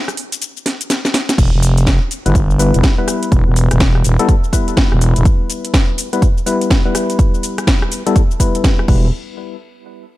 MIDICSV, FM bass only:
0, 0, Header, 1, 2, 480
1, 0, Start_track
1, 0, Tempo, 483871
1, 1372, Time_signature, 4, 2, 24, 8
1, 10093, End_track
2, 0, Start_track
2, 0, Title_t, "FM bass"
2, 0, Program_c, 0, 39
2, 1371, Note_on_c, 0, 28, 93
2, 1496, Note_off_c, 0, 28, 0
2, 1521, Note_on_c, 0, 29, 92
2, 1977, Note_off_c, 0, 29, 0
2, 2240, Note_on_c, 0, 31, 95
2, 2696, Note_off_c, 0, 31, 0
2, 2720, Note_on_c, 0, 29, 96
2, 2797, Note_off_c, 0, 29, 0
2, 3291, Note_on_c, 0, 28, 93
2, 3416, Note_off_c, 0, 28, 0
2, 3440, Note_on_c, 0, 28, 93
2, 3656, Note_off_c, 0, 28, 0
2, 3680, Note_on_c, 0, 28, 96
2, 3997, Note_off_c, 0, 28, 0
2, 4012, Note_on_c, 0, 28, 96
2, 4136, Note_off_c, 0, 28, 0
2, 4880, Note_on_c, 0, 28, 94
2, 5096, Note_off_c, 0, 28, 0
2, 5120, Note_on_c, 0, 28, 93
2, 5197, Note_off_c, 0, 28, 0
2, 8812, Note_on_c, 0, 28, 95
2, 9035, Note_off_c, 0, 28, 0
2, 10093, End_track
0, 0, End_of_file